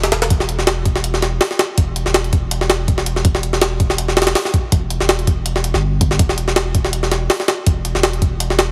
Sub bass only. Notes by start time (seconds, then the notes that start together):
Already playing: E1
0.12 E1
0.30 E1
1.78 E1
2.06 E1
3.25 E1
4.72 E1
5.01 E1
5.74 G1
6.19 E1
7.67 E1
7.95 E1